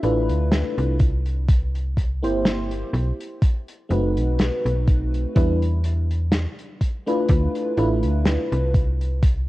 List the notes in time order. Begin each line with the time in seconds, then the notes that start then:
0.03 A1 A3 D4 E4 F4 B4, closed hi-hat
0.29 D2, closed hi-hat
0.52 snare, closed hi-hat
0.78 C2, closed hi-hat
0.99 kick, closed hi-hat
1.26 closed hi-hat
1.49 kick, closed hi-hat
1.75 closed hi-hat
1.97 kick, closed hi-hat
2.23 G1 A#3 C4 E4 G4 C5, closed hi-hat
2.45 snare, closed hi-hat
2.71 closed hi-hat
2.93 B1, closed hi-hat
3.21 closed hi-hat
3.42 kick, closed hi-hat
3.68 closed hi-hat
3.89 F#1 A3 C4 D#4 F#4 B4, closed hi-hat
4.17 B1, closed hi-hat
4.39 snare, closed hi-hat
4.65 B1, closed hi-hat
4.87 kick, closed hi-hat
5.14 closed hi-hat
5.35 E2 G3 B3 D4 E4 B4, kick, closed hi-hat
5.62 closed hi-hat
5.84 closed hi-hat
6.11 closed hi-hat
6.32 snare, closed hi-hat
6.59 closed hi-hat
6.81 kick, closed hi-hat
7.06 A3 D4 E4 F4 B4, closed hi-hat
7.28 D2, kick, closed hi-hat
7.55 closed hi-hat
7.77 A1 A3 D4 E4 F4 B4, closed hi-hat
8.03 D2, closed hi-hat
8.25 snare, closed hi-hat
8.52 C2, closed hi-hat
8.74 kick, closed hi-hat
9.01 closed hi-hat
9.23 kick, closed hi-hat